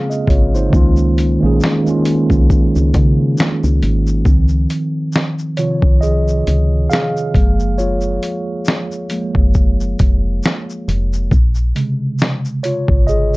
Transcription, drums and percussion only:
0.11 shaker
0.27 kick, closed hi-hat, shaker
0.55 shaker
0.73 kick, shaker
0.96 shaker
1.18 closed hi-hat, shaker
1.61 snare, shaker
1.87 shaker
2.05 closed hi-hat, shaker
2.30 kick, shaker
2.50 kick, shaker
2.75 shaker
2.94 kick, closed hi-hat, shaker
3.38 snare, shaker
3.64 shaker
3.83 closed hi-hat, shaker
4.07 shaker
4.25 kick, shaker
4.48 shaker
4.70 closed hi-hat, shaker
5.13 snare, shaker
5.39 shaker
5.57 closed hi-hat, shaker
5.82 kick
6.03 shaker
6.28 shaker
6.47 closed hi-hat, shaker
6.91 snare, shaker
7.17 shaker
7.34 kick, closed hi-hat, shaker
7.60 shaker
7.79 shaker
8.01 shaker
8.23 closed hi-hat, shaker
8.65 snare, shaker
8.92 shaker
9.10 closed hi-hat, shaker
9.35 kick
9.54 kick, shaker
9.80 shaker
9.99 kick, closed hi-hat, shaker
10.43 snare, shaker
10.70 shaker
10.89 closed hi-hat, shaker
11.13 shaker
11.31 kick, shaker
11.55 shaker
11.76 closed hi-hat, shaker
12.19 snare, shaker
12.45 shaker
12.64 closed hi-hat, shaker
12.88 kick
13.08 shaker

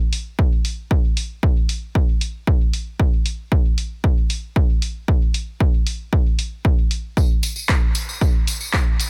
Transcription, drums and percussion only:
0.13 open hi-hat
0.39 kick
0.65 open hi-hat
0.91 kick
1.17 open hi-hat
1.43 kick
1.69 open hi-hat
1.95 kick
2.21 open hi-hat
2.47 kick
2.73 open hi-hat
3.00 kick
3.26 open hi-hat
3.52 kick
3.78 open hi-hat
4.04 kick
4.30 open hi-hat
4.56 kick
4.82 open hi-hat
5.08 kick
5.34 open hi-hat
5.60 kick
5.87 open hi-hat
6.13 kick
6.39 open hi-hat
6.65 kick
6.91 open hi-hat
7.17 kick, tambourine
7.43 open hi-hat, tambourine
7.56 tambourine
7.68 kick, clap, tambourine
7.95 open hi-hat, tambourine
8.09 tambourine
8.21 kick, tambourine
8.47 open hi-hat, tambourine
8.61 tambourine
8.73 kick, clap, tambourine
9.00 open hi-hat, tambourine

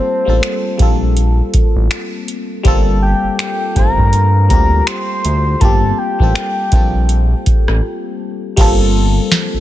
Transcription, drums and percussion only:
0.43 finger snap, closed hi-hat
0.79 kick, closed hi-hat
1.17 closed hi-hat
1.54 kick, closed hi-hat
1.91 finger snap, closed hi-hat
2.28 closed hi-hat
2.65 kick, closed hi-hat
3.39 finger snap, closed hi-hat
3.76 kick, closed hi-hat
3.98 kick
4.13 closed hi-hat
4.50 kick, closed hi-hat
4.87 finger snap, closed hi-hat
5.25 closed hi-hat
5.61 kick, closed hi-hat
6.20 kick
6.35 finger snap, closed hi-hat
6.72 kick, closed hi-hat
7.09 closed hi-hat
7.46 kick, closed hi-hat
7.68 cross-stick
8.57 kick, closed hi-hat, crash
9.32 snare, closed hi-hat

